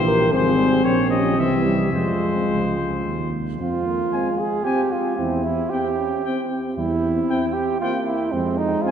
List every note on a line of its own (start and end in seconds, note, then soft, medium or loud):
0.00 0.33 A#1 medium
0.00 0.32 E3 medium
0.00 0.33 G4 medium
0.00 0.33 C5 medium
0.07 0.35 A#4 medium
0.33 0.84 G#1 medium
0.33 0.59 F3 soft
0.33 1.10 C4 medium
0.33 0.85 G#4 soft
0.33 0.86 C5 medium
0.58 0.86 G3 medium
0.84 1.39 A#1 soft
0.84 1.37 F3 soft
0.84 1.92 G4 soft
0.84 1.09 C#5 medium
1.10 1.39 C#4 medium
1.10 1.41 D#5 soft
1.37 1.94 C2 soft
1.37 1.94 E3 soft
1.37 1.65 C4 medium
1.37 1.93 E5 soft
1.64 1.92 G3 medium
1.92 2.48 F2 soft
1.92 3.33 F3 soft
1.92 3.30 G#3 soft
1.92 3.30 F4 soft
1.92 3.30 C5 soft
2.49 3.04 C#2 soft
3.05 3.59 D#2 soft
3.60 4.04 F2 soft
3.60 3.88 C4 soft
3.60 4.41 F4 medium
3.86 4.14 A#3 soft
4.12 4.67 G#3 soft
4.12 4.29 C4 soft
4.12 4.28 G#5 soft
4.39 4.65 G#4 medium
4.64 4.81 C4 soft
4.64 5.17 C4 soft
4.64 4.94 G4 medium
4.64 4.81 G#5 soft
4.92 5.16 F4 medium
5.16 5.63 E2 soft
5.16 5.43 C4 soft
5.16 5.70 E4 medium
5.44 5.71 E4 medium
5.70 5.99 C4 soft
5.70 5.89 C4 soft
5.70 6.50 G4 medium
5.70 5.88 G5 soft
5.97 6.24 C#4 soft
6.25 6.76 C4 soft
6.25 6.42 C4 soft
6.25 6.41 G5 soft
6.76 7.21 E2 medium
6.76 6.89 G3 soft
6.76 7.55 E4 medium
7.03 7.80 C4 soft
7.29 7.46 C4 soft
7.29 7.46 G5 soft
7.53 7.80 G4 medium
7.81 8.32 A#3 soft
7.81 7.98 C4 soft
7.81 7.92 F4 medium
7.81 7.99 G5 soft
8.06 8.34 E4 medium
8.32 8.77 F2 medium
8.32 8.91 G#3 medium
8.32 8.59 C4 medium
8.58 8.84 D#4 medium
8.82 8.91 C4 soft
8.82 8.91 F4 medium
8.87 8.91 G#5 soft